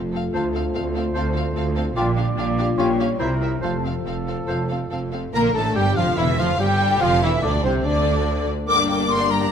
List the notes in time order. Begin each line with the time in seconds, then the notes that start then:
Already playing: F1 F2 F3 A3 C4 F4 A4
0.13 C4 F4 A4 F5
0.33 D2 D3 C4 F4 A4 C5 F5 A5
0.54 C4 A4 F5
0.74 D2 C4 F4 A4 F5
0.95 C4 A4 F5
1.14 D2 C4 F4 A4 C5 F5 A5
1.33 C4 A4 F5
1.55 D2 C4 F4 A4 F5
1.76 C4 A4 F5
1.95 A#1 A#2 G3 D4 F4 G4 D5 F5 G5
2.16 D4 G4 F5
2.37 A#1 A#2 D4 F4 G4 F5
2.57 D4 G4 F5
2.77 A#1 A#2 C#4 F4 G4 C#5 F5 G5
2.98 C#4 F4 G4 F5
3.19 C2 C3 C4 E4 A#4 C5 E5 A#5
3.41 C4 E4 A#4 E5
3.61 F1 F2 F3 C4 F4 A4 C5 F5 A5
3.84 C4 F4 A4 F5
4.05 F1 F2 C4 A4 F5
4.26 C4 F4 A4 F5
4.47 F1 F2 C4 F4 A4 C5 F5 A5
4.69 C4 F4 A4 F5
4.90 F1 F2 C4 A4 F5
5.12 C4 F4 A4 F5
5.33 A#1 A#2 D3 A#3 A#4 A#5
5.53 A1 A2 A3 D4 A4 A5
5.75 G1 G2 G3 G4 A4 G5
5.96 F1 F2 F3 F4 F5
6.17 E1 E2 C#3 E3 E4 E5
6.38 F1 F2 F3 F4 F5
6.58 G1 G2 G3 G4 A4 G5
6.81 E4
7.00 F1 F2 D3 F3 F4 F5
7.22 E1 E2 E3 E4 E5
7.42 D2 D3 D4 D5
7.63 C2 C3 C4 A4 C5
7.84 D2 D3 A3 D4 D5
8.05 F4
8.25 D5
8.47 A4
8.66 G1 G2 A#3 D4 A#4 D5 G5 D6
8.78 D4 G4 D5
8.88 A#3 D4 A#4 G5 D6
8.98 D4 G4 D5
9.09 A#3 A#4 D5 G5 C6
9.18 D4 G4 D5
9.29 A#3 A#4 G5 A#5
9.41 D4 G4 D5